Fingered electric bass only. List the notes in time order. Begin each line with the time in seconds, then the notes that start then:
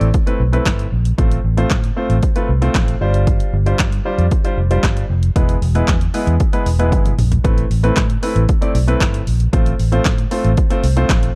0.01 A1
0.40 B1
0.66 G1
0.92 A#1
1.18 A1
1.44 A1
1.71 A2
2.10 A1
2.49 C2
2.75 A1
3.01 G1
3.53 G1
3.80 G2
4.18 F2
4.58 F1
4.83 G1
5.10 F1
5.36 E1
5.62 E1
5.88 E2
6.27 E2
6.66 E1
6.92 G1
7.18 A#1
7.45 A1
7.70 A1
7.97 A2
8.36 A1
8.75 B1
9.01 G1
9.27 A#1
9.53 A1
9.79 A1
10.06 A2
10.45 A1
10.84 C2
11.09 A1